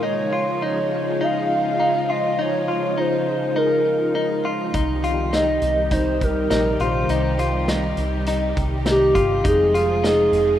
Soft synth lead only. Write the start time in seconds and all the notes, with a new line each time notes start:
0.05 C#5
0.65 C#5
1.23 F5
2.10 D#5
2.41 C#5
3.00 C5
3.57 A#4
5.35 D#5
5.93 C5
6.24 A#4
6.82 C5
8.90 G4
9.47 G#4
10.07 G#4